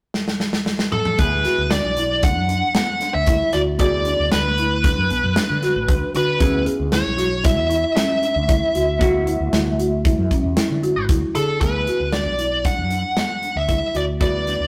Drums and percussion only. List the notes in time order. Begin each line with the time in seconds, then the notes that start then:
0.14 snare
0.28 snare
0.40 snare
0.53 snare
0.66 snare
0.79 snare
0.92 mid tom
1.05 mid tom
1.18 kick, closed hi-hat
1.45 snare, closed hi-hat
1.71 snare, closed hi-hat
1.97 closed hi-hat
2.23 kick, closed hi-hat
2.49 closed hi-hat
2.75 snare, closed hi-hat
3.01 snare, closed hi-hat
3.27 kick, closed hi-hat
3.53 closed hi-hat
3.79 kick, closed hi-hat
4.05 closed hi-hat
4.32 snare, closed hi-hat
4.58 closed hi-hat
4.84 kick, closed hi-hat
5.10 closed hi-hat
5.36 snare, closed hi-hat
5.63 snare, closed hi-hat
5.89 kick, closed hi-hat
6.15 closed hi-hat
6.40 kick, closed hi-hat
6.66 closed hi-hat
6.92 snare, closed hi-hat
7.18 snare, closed hi-hat
7.44 kick, snare, closed hi-hat
7.71 closed hi-hat
7.97 snare, closed hi-hat
8.23 closed hi-hat
8.49 kick, closed hi-hat
8.75 closed hi-hat
9.01 kick, closed hi-hat
9.27 closed hi-hat
9.53 snare, closed hi-hat
9.79 closed hi-hat
10.05 kick, closed hi-hat
10.31 kick, closed hi-hat
10.57 snare, closed hi-hat
10.83 closed hi-hat
11.09 kick, closed hi-hat
11.35 closed hi-hat
11.61 kick, closed hi-hat
11.87 closed hi-hat
12.13 snare, closed hi-hat
12.39 closed hi-hat
12.65 kick, closed hi-hat
12.91 closed hi-hat
13.17 snare, closed hi-hat
13.43 closed hi-hat
13.69 kick, closed hi-hat
13.95 closed hi-hat
14.21 kick, closed hi-hat
14.47 snare, closed hi-hat